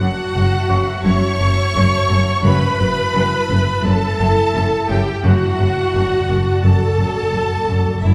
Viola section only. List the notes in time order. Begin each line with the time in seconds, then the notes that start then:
Already playing: F#4
1.06 C#5
2.45 B4
3.85 A4
4.89 G4
5.25 F#4
6.64 A4
8.04 E4